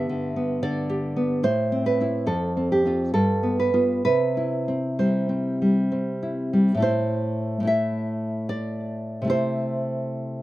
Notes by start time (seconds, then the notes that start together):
Already playing: G2 B3 E5
0.09 D3
0.36 B3
0.63 D3 D5
0.90 G4
1.16 B3
1.43 A2 C5
1.72 C4
1.86 B4
2.00 C4 E4
2.26 F2 A4
2.57 C4
2.72 G4
2.85 C4 F4
3.14 G2 A4
3.43 B3
3.59 B4
3.74 B3 F4
4.05 C3 B4
4.37 E4
4.68 C4
4.99 G3 C5
5.29 C4
5.62 G3
5.92 C4
6.23 E4
6.53 G3
6.75 A2 A3
6.80 E4 C5
7.60 A2 A3
7.65 E4 E5
8.49 D5
9.22 C3 A3
9.27 E4 C5